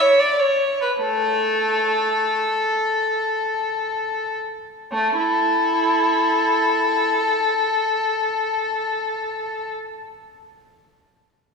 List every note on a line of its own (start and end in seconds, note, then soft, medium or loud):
0.01 0.19 C#5 medium
0.19 0.39 D5 medium
0.39 0.80 C#5 medium
0.81 0.89 B4 medium
1.01 2.34 A3 medium
1.01 4.36 A4 medium
4.92 5.16 A3 medium
5.17 7.17 E4 medium
5.17 9.73 A4 medium